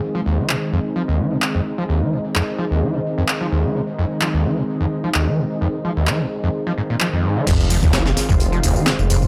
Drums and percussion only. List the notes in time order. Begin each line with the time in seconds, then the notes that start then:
0.49 clap
1.42 clap
2.35 clap
3.28 clap
4.21 clap
5.14 clap
6.07 clap
7.00 clap
7.47 kick, closed hi-hat, crash, tambourine
7.60 tambourine
7.70 closed hi-hat, open hi-hat, tambourine
7.83 kick, tambourine
7.93 snare, clap, closed hi-hat, tambourine
8.06 snare, tambourine
8.17 snare, closed hi-hat, open hi-hat, tambourine
8.29 kick, tambourine
8.40 closed hi-hat, tambourine
8.53 tambourine
8.63 closed hi-hat, open hi-hat, tambourine
8.76 tambourine
8.86 snare, clap, closed hi-hat, tambourine
8.99 tambourine
9.10 closed hi-hat, open hi-hat, tambourine
9.22 kick, tambourine